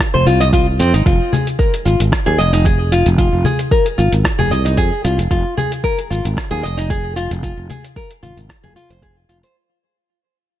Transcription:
0.00 kick loud
0.00 cross-stick medium
0.00 closed hi-hat medium
0.00 shaker soft
0.14 0.25 F1 loud
0.14 0.25 C5 medium
0.14 low conga medium
0.26 0.79 C2 medium
0.26 0.40 F4 medium
0.26 shaker medium
0.40 0.48 D#5 medium
0.40 closed hi-hat soft
0.40 shaker soft
0.53 0.66 F4 medium
0.53 kick loud
0.53 closed hi-hat medium
0.53 shaker soft
0.79 0.91 F2 loud
0.79 0.92 C4 medium
0.79 closed hi-hat soft
0.79 shaker medium
0.94 1.04 G#1 medium
0.94 1.05 D#4 medium
0.94 closed hi-hat soft
0.94 shaker soft
1.06 1.18 F1 loud
1.06 1.31 F4 medium
1.06 kick loud
1.06 closed hi-hat soft
1.06 shaker soft
1.32 1.46 G#4 medium
1.32 low conga medium
1.32 shaker medium
1.47 closed hi-hat soft
1.47 shaker soft
1.59 1.72 A#4 medium
1.59 kick loud
1.59 shaker soft
1.74 closed hi-hat soft
1.85 1.98 G#1 medium
1.85 1.99 F4 medium
1.85 shaker medium
2.00 2.10 G#1 medium
2.00 closed hi-hat soft
2.00 shaker soft
2.12 kick loud
2.12 cross-stick medium
2.12 closed hi-hat medium
2.12 shaker soft
2.26 2.37 D#2 loud
2.26 2.37 G#4 loud
2.38 3.03 F1 loud
2.38 2.51 D#5 medium
2.38 shaker medium
2.53 2.65 D#4 medium
2.53 closed hi-hat soft
2.53 shaker soft
2.65 2.91 G#4 medium
2.65 kick loud
2.65 closed hi-hat medium
2.65 shaker soft
2.92 3.05 F4 medium
2.92 closed hi-hat medium
2.92 shaker medium
3.06 3.28 F1 medium
3.06 closed hi-hat soft
3.06 shaker soft
3.18 3.44 F4 medium
3.18 kick loud
3.18 closed hi-hat medium
3.18 shaker soft
3.33 3.43 F1 loud
3.45 3.58 G#4 medium
3.45 low conga medium
3.45 shaker medium
3.59 closed hi-hat soft
3.59 shaker soft
3.71 3.85 A#4 medium
3.71 kick loud
3.71 shaker soft
3.86 closed hi-hat medium
3.98 4.10 G#1 medium
3.98 4.11 F4 medium
3.98 shaker medium
4.13 4.23 G#1 medium
4.13 closed hi-hat soft
4.13 shaker soft
4.25 kick loud
4.25 cross-stick medium
4.25 closed hi-hat medium
4.25 shaker soft
4.39 4.49 F1 loud
4.39 4.50 G#4 loud
4.39 low conga medium
4.51 4.77 C2 loud
4.51 4.64 D#5 medium
4.51 shaker medium
4.65 4.77 D#4 medium
4.65 closed hi-hat soft
4.65 shaker soft
4.77 4.90 F2 medium
4.77 5.03 G#4 medium
4.77 kick loud
4.77 closed hi-hat medium
4.77 shaker soft
5.04 5.16 C2 loud
5.04 5.18 F4 medium
5.04 closed hi-hat medium
5.04 shaker medium
5.19 5.29 F1 medium
5.19 closed hi-hat soft
5.19 shaker soft
5.31 5.43 F1 loud
5.31 5.56 F4 medium
5.31 kick loud
5.31 closed hi-hat medium
5.31 shaker soft
5.57 5.71 G#4 medium
5.57 low conga medium
5.57 shaker medium
5.72 closed hi-hat soft
5.72 shaker soft
5.84 5.97 A#4 medium
5.84 kick loud
5.84 shaker soft
5.99 closed hi-hat medium
6.10 6.22 G#1 medium
6.10 6.24 F4 medium
6.10 shaker medium
6.25 6.35 G#1 medium
6.25 closed hi-hat soft
6.25 shaker soft
6.37 kick loud
6.37 cross-stick medium
6.37 closed hi-hat medium
6.37 shaker soft
6.51 6.62 D#2 loud
6.51 6.62 G#4 loud
6.63 7.27 F1 loud
6.63 6.76 D#5 medium
6.63 shaker medium
6.77 6.89 D#4 medium
6.77 closed hi-hat soft
6.77 shaker soft
6.90 7.15 G#4 medium
6.90 kick loud
6.90 closed hi-hat medium
6.90 shaker soft
7.16 7.30 F4 medium
7.16 closed hi-hat medium
7.16 shaker medium
7.31 7.53 F1 medium
7.31 closed hi-hat soft
7.31 shaker soft
7.43 7.68 F4 medium
7.43 kick loud
7.43 closed hi-hat medium
7.43 shaker soft
7.57 7.68 F1 medium
7.70 7.83 G#4 medium
7.70 closed hi-hat soft
7.70 low conga medium
7.70 shaker medium
7.84 closed hi-hat soft
7.84 shaker soft
7.96 8.10 A#4 medium
7.96 kick loud
7.96 shaker soft
8.11 closed hi-hat medium
8.23 8.35 G#1 medium
8.23 8.36 F4 medium
8.23 closed hi-hat soft
8.23 low conga medium
8.23 shaker medium
8.37 8.47 G#1 medium
8.37 closed hi-hat soft
8.37 shaker soft
8.49 kick loud
8.49 cross-stick medium
8.49 closed hi-hat medium
8.49 shaker soft
8.64 8.74 F1 loud
8.64 8.75 G#4 loud
8.64 low conga medium
8.76 8.89 F4 loud
8.76 closed hi-hat soft
8.76 shaker medium
8.90 9.26 F1 loud
8.90 9.02 C5 medium
8.90 closed hi-hat soft
8.90 shaker soft
9.02 9.15 G#4 medium
9.02 kick loud
9.02 closed hi-hat medium
9.02 shaker soft
9.29 9.41 F1 loud
9.29 9.37 F4 loud
9.29 closed hi-hat medium
9.29 shaker medium
9.43 9.55 C5 medium
9.43 closed hi-hat soft
9.43 shaker soft

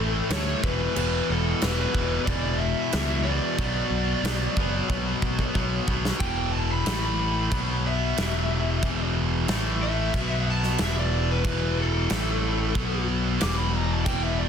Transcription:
0.00 0.21 A1 medium
0.00 0.32 A2 loud
0.00 0.33 E3 loud
0.00 0.34 A3 loud
0.00 0.38 A4 medium
0.30 0.53 D2 medium
0.30 0.63 A2 medium
0.30 0.63 E3 medium
0.30 0.63 C#5 medium
0.30 snare loud
0.30 crash medium
0.35 0.64 A3 loud
0.63 0.87 E1 medium
0.63 0.94 E2 loud
0.63 0.95 B2 loud
0.63 0.95 E3 medium
0.63 0.96 B4 medium
0.63 kick loud
0.95 1.20 E1 medium
0.95 1.61 E2 loud
0.95 1.62 B2 loud
0.95 1.63 E3 loud
0.95 1.31 B4 medium
0.95 crash medium
1.29 1.53 E1 medium
1.29 1.63 A4 medium
1.62 1.85 E1 loud
1.62 1.93 E2 medium
1.62 1.94 B2 medium
1.62 1.94 E3 medium
1.62 2.23 B4 medium
1.62 snare loud
1.62 crash medium
1.94 2.18 E1 medium
1.94 2.25 E2 medium
1.94 2.25 B2 medium
1.94 2.26 E3 medium
1.94 kick medium
2.25 2.73 E1 loud
2.25 2.92 E2 loud
2.25 2.92 B2 loud
2.25 2.93 E3 loud
2.25 2.60 D5 loud
2.25 kick loud
2.25 crash medium
2.58 3.27 E5 medium
2.92 3.39 C#2 medium
2.92 3.23 E2 medium
2.92 3.24 B2 medium
2.92 3.25 E3 loud
2.92 snare loud
2.92 crash medium
3.23 3.56 E2 medium
3.23 3.56 B2 medium
3.23 3.56 E3 medium
3.23 4.85 D5 medium
3.58 3.82 B1 medium
3.58 4.23 B2 loud
3.58 4.24 F#3 medium
3.58 4.24 B3 loud
3.58 kick loud
3.58 crash medium
3.90 4.14 B1 medium
4.23 4.46 B1 medium
4.23 4.57 B2 medium
4.23 4.58 F#3 medium
4.23 4.58 B3 medium
4.23 snare loud
4.23 crash medium
4.57 4.80 F#1 medium
4.57 4.87 B2 medium
4.57 4.88 F#3 medium
4.57 4.89 B3 medium
4.57 kick medium
4.85 5.12 B1 medium
4.85 5.53 B2 loud
4.85 5.82 C#5 medium
4.90 5.54 F#3 loud
4.90 5.54 B3 loud
4.90 kick loud
5.22 5.46 B1 medium
5.22 kick medium
5.39 kick medium
5.55 5.79 B1 medium
5.55 5.87 B2 medium
5.55 5.87 F#3 medium
5.55 5.87 B3 medium
5.55 kick medium
5.88 6.11 B1 medium
5.88 6.19 B2 medium
5.88 6.19 F#3 medium
5.88 6.19 B3 medium
5.88 kick loud
6.05 snare medium
6.19 6.82 E1 medium
6.19 6.84 E2 loud
6.19 6.85 B2 medium
6.19 6.85 E3 loud
6.19 6.52 G5 medium
6.19 kick loud
6.19 crash medium
6.52 6.71 A5 medium
6.71 7.02 B5 medium
6.85 7.48 A1 loud
6.85 7.50 A2 loud
6.85 7.50 E3 loud
6.85 7.51 A3 loud
6.85 snare loud
6.85 crash medium
7.04 7.83 B5 medium
7.52 8.13 B1 loud
7.52 8.16 B2 medium
7.52 8.16 F#3 medium
7.52 8.17 B3 medium
7.52 kick loud
7.52 crash medium
7.87 9.13 E5 medium
8.18 8.79 E1 medium
8.18 8.81 E2 medium
8.18 8.82 B2 loud
8.18 8.82 E3 loud
8.18 snare loud
8.18 crash medium
8.82 9.44 E1 medium
8.82 9.47 E2 medium
8.82 9.48 B2 loud
8.82 9.48 E3 loud
8.82 kick loud
8.82 crash medium
9.48 10.10 A1 loud
9.48 10.16 A2 medium
9.48 10.17 E3 loud
9.48 10.17 A3 loud
9.48 snare loud
9.48 crash medium
9.83 10.45 E5 medium
10.14 10.75 B1 loud
10.14 10.79 B2 loud
10.14 10.80 F#3 medium
10.14 10.80 B3 loud
10.14 kick loud
10.14 crash medium
10.50 10.80 A5 medium
10.63 snare soft
10.78 11.41 E1 medium
10.78 11.43 E2 medium
10.78 11.44 B2 loud
10.78 11.44 E3 loud
10.78 snare loud
10.78 crash medium
10.84 10.97 E5 loud
10.99 11.29 D5 medium
11.31 11.78 B4 medium
11.44 12.09 E2 medium
11.44 12.09 B2 loud
11.44 12.10 E3 loud
11.44 kick loud
11.44 crash medium
11.80 13.06 A4 loud
12.10 12.72 A1 loud
12.10 12.75 A2 loud
12.10 12.75 E3 loud
12.10 12.75 A3 loud
12.10 snare loud
12.10 crash medium
12.75 13.37 B1 medium
12.75 13.40 B2 loud
12.75 13.41 F#3 loud
12.75 13.41 B3 loud
12.75 kick loud
12.75 crash medium
13.41 14.04 E1 medium
13.41 14.04 E2 loud
13.41 14.05 B2 medium
13.41 14.06 E3 loud
13.41 13.56 D6 loud
13.41 snare loud
13.41 crash medium
13.56 13.73 B5 medium
13.73 13.92 A#5 medium
13.92 14.07 A5 medium
14.05 14.49 E1 medium
14.05 14.49 E2 medium
14.05 14.49 B2 loud
14.05 14.49 E3 loud
14.05 14.23 G5 medium
14.05 kick loud
14.05 crash medium
14.23 14.39 E5 loud
14.39 14.49 D5 medium

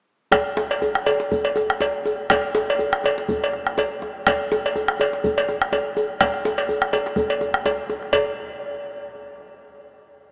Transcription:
0.32 bombo rim medium
0.32 bombo low medium
0.32 cowbell soft
0.32 djembe bass medium
0.57 djembe slap medium
0.57 djembe tone medium
0.71 cowbell soft
0.82 bombo rim soft
0.82 djembe bass medium
0.95 bombo rim medium
1.06 cowbell soft
1.06 djembe tone medium
1.20 djembe slap medium
1.32 bombo low medium
1.32 djembe bass medium
1.45 cowbell soft
1.56 bombo rim soft
1.56 djembe tone medium
1.70 bombo rim medium
1.81 cowbell soft
1.81 djembe slap medium
1.81 djembe bass medium
2.05 djembe tone medium
2.30 bombo rim medium
2.30 bombo low medium
2.30 cowbell medium
2.30 djembe bass medium
2.55 djembe slap medium
2.55 djembe tone medium
2.70 cowbell soft
2.79 bombo rim soft
2.79 djembe bass medium
2.93 bombo rim medium
3.04 cowbell soft
3.04 djembe tone medium
3.18 djembe slap soft
3.29 bombo low loud
3.29 djembe bass medium
3.44 cowbell soft
3.53 bombo rim soft
3.67 bombo rim medium
3.78 cowbell soft
3.78 djembe slap medium
3.78 djembe bass medium
4.02 djembe tone medium
4.27 bombo rim medium
4.27 bombo low medium
4.27 cowbell medium
4.27 djembe bass medium
4.52 djembe slap medium
4.52 djembe tone medium
4.66 cowbell soft
4.76 bombo rim soft
4.76 djembe bass medium
4.88 bombo rim medium
5.00 cowbell soft
5.00 djembe tone medium
5.13 djembe slap soft
5.24 bombo low medium
5.24 djembe bass medium
5.38 cowbell soft
5.48 bombo rim soft
5.48 djembe tone medium
5.62 bombo rim medium
5.73 cowbell soft
5.73 djembe slap medium
5.73 djembe bass medium
5.97 djembe tone medium
6.21 bombo rim loud
6.21 bombo low loud
6.21 cowbell medium
6.21 djembe slap soft
6.21 djembe bass medium
6.34 bombo rim soft
6.34 djembe slap soft
6.45 djembe slap medium
6.45 djembe tone medium
6.58 bombo rim soft
6.58 cowbell soft
6.58 djembe slap soft
6.69 djembe bass medium
6.82 bombo rim medium
6.93 bombo rim soft
6.93 cowbell soft
6.93 djembe slap soft
6.93 djembe tone medium
7.06 bombo rim soft
7.06 djembe slap medium
7.16 bombo rim soft
7.16 bombo low loud
7.16 djembe bass medium
7.30 cowbell soft
7.41 djembe slap soft
7.41 djembe tone medium
7.54 bombo rim medium
7.66 cowbell soft
7.66 djembe slap medium
7.66 djembe bass medium
7.90 djembe slap soft
7.90 djembe tone medium
8.02 bombo rim soft
8.02 djembe slap soft
8.12 bombo low medium
8.12 cowbell medium
8.12 djembe bass medium

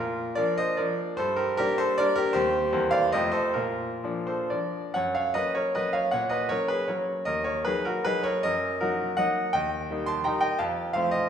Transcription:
0.00 0.36 A#2 medium
0.00 0.34 F4 medium
0.00 0.35 A#4 medium
0.35 0.75 F3 medium
0.35 0.75 A#3 medium
0.35 0.75 D4 medium
0.35 0.57 A#4 medium
0.35 0.57 D5 loud
0.58 0.77 C5 medium
0.58 0.78 D#5 loud
0.77 1.15 F3 medium
0.77 1.15 A#3 medium
0.77 1.15 D4 medium
0.77 1.15 A#4 medium
0.77 1.18 D5 medium
1.17 1.58 G2 medium
1.17 1.37 A4 medium
1.17 1.38 C5 loud
1.36 1.57 G4 medium
1.36 1.56 A#4 loud
1.57 1.96 G3 medium
1.57 1.95 A#3 medium
1.57 1.96 D4 medium
1.57 1.78 G4 loud
1.57 1.79 A#4 loud
1.78 1.98 A4 medium
1.78 1.98 C5 loud
1.98 2.32 G3 medium
1.98 2.32 A#3 medium
1.98 2.33 D4 medium
1.98 2.14 A#4 loud
1.98 2.17 D5 loud
2.16 2.33 G4 medium
2.16 2.35 A#4 loud
2.33 2.72 D#2 medium
2.33 2.69 G3 medium
2.33 2.70 C4 medium
2.33 2.89 G4 loud
2.33 2.93 C5 loud
2.73 3.13 E2 loud
2.73 3.10 G3 medium
2.73 3.10 A#3 medium
2.73 3.10 C4 medium
2.91 3.12 D5 loud
2.91 3.13 F5 loud
3.12 3.55 F2 medium
3.12 3.52 F3 medium
3.12 3.52 A3 medium
3.12 3.53 C4 medium
3.12 3.30 C5 medium
3.12 3.34 D#5 loud
3.32 3.53 A4 medium
3.32 3.55 C5 loud
3.54 4.02 A#2 medium
3.54 4.69 F4 medium
3.54 4.49 A#4 medium
4.04 4.47 F3 medium
4.04 4.47 A#3 medium
4.04 4.47 D4 medium
4.27 4.50 A4 medium
4.27 4.50 C5 medium
4.50 4.91 F3 medium
4.50 4.91 A#3 medium
4.50 4.91 D4 medium
4.50 4.91 A#4 medium
4.50 4.94 D5 medium
4.94 5.34 F#2 medium
4.94 5.13 C#5 medium
4.94 5.14 F#5 loud
5.15 5.34 C#5 medium
5.15 5.35 F5 loud
5.34 5.71 F#3 medium
5.34 5.72 A#3 medium
5.34 5.72 C#4 medium
5.34 5.54 B4 medium
5.34 5.55 D#5 loud
5.55 5.74 A#4 medium
5.55 5.74 C#5 loud
5.75 6.09 F#3 medium
5.75 6.09 A#3 medium
5.75 6.09 C#4 medium
5.75 5.92 B4 medium
5.75 5.93 D#5 loud
5.93 6.11 C#5 medium
5.93 6.11 F5 loud
6.11 6.50 A#2 medium
6.11 6.30 C#5 medium
6.11 6.30 F#5 loud
6.29 6.49 B4 medium
6.29 6.50 D#5 loud
6.49 6.86 F#3 medium
6.49 6.86 A#3 medium
6.49 6.86 C#4 medium
6.49 6.69 A#4 medium
6.49 6.70 C#5 loud
6.68 6.88 G#4 medium
6.68 6.88 B4 medium
6.88 7.23 F#3 medium
6.88 7.24 A#3 medium
6.88 7.24 C#4 medium
6.88 7.24 A#4 medium
6.88 7.26 C#5 medium
7.25 7.65 D#2 medium
7.25 7.44 A#4 medium
7.25 7.45 D#5 loud
7.44 7.65 A#4 medium
7.44 7.65 C#5 loud
7.65 8.02 F#3 medium
7.65 8.02 A#3 medium
7.65 8.02 D#4 medium
7.65 7.85 G#4 medium
7.65 7.86 B4 loud
7.85 8.04 F#4 medium
7.85 8.05 A#4 loud
8.05 8.40 F#3 medium
8.05 8.40 A#3 medium
8.05 8.40 D#4 medium
8.05 8.23 G#4 medium
8.05 8.24 B4 loud
8.23 8.42 A#4 medium
8.23 8.43 C#5 loud
8.43 8.81 F#2 medium
8.43 8.79 A#4 medium
8.43 8.81 D#5 loud
8.81 9.15 F#3 medium
8.81 9.15 A#3 medium
8.81 9.15 D#4 medium
8.81 8.99 F#4 medium
8.81 9.00 A#4 loud
9.17 9.50 F#3 medium
9.17 9.50 A#3 medium
9.17 9.50 D#4 medium
9.17 9.51 D#5 medium
9.17 9.52 F#5 loud
9.53 9.90 D#2 medium
9.53 10.05 D#5 medium
9.53 10.09 G5 loud
9.91 10.23 G3 medium
9.91 10.23 A#3 medium
9.91 10.23 D#4 medium
10.06 10.25 A5 medium
10.06 10.25 C6 loud
10.24 10.57 G3 medium
10.24 10.56 A#3 medium
10.24 10.57 D#4 medium
10.24 10.39 G5 medium
10.24 10.42 A#5 loud
10.41 10.58 D#5 medium
10.41 10.59 G5 loud
10.59 10.94 F2 medium
10.59 10.92 F5 medium
10.59 10.95 A5 loud
10.93 11.28 F3 medium
10.93 11.28 A3 medium
10.93 11.28 C4 medium
10.93 11.11 C5 medium
10.93 11.13 F5 loud
11.11 11.29 C5 medium
11.11 11.29 D#5 loud

